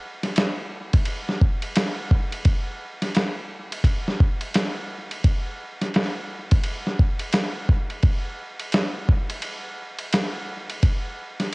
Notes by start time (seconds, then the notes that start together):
0.23 snare, ride
0.36 snare, hi-hat pedal, ride
0.93 kick, ride
1.05 ride
1.29 snare
1.41 kick
1.62 ride
1.76 snare, hi-hat pedal, ride
2.11 kick
2.32 ride
2.45 kick, ride
3.02 snare, ride
3.15 snare, hi-hat pedal, ride
3.72 ride
3.84 kick, ride
4.08 snare
4.20 kick
4.41 ride
4.54 snare, hi-hat pedal, ride
5.11 ride
5.24 kick, ride
5.82 snare, ride
5.94 snare, hi-hat pedal, ride
6.51 kick, ride
6.63 ride
6.87 snare
6.99 kick
7.19 ride
7.33 snare, hi-hat pedal, ride
7.69 kick
7.90 ride
8.03 kick, ride
8.60 ride
8.72 snare, hi-hat pedal, ride
9.09 kick
9.30 ride
9.42 ride
9.99 ride
10.13 snare, hi-hat pedal, ride
10.69 ride
10.83 kick, ride
11.40 snare, ride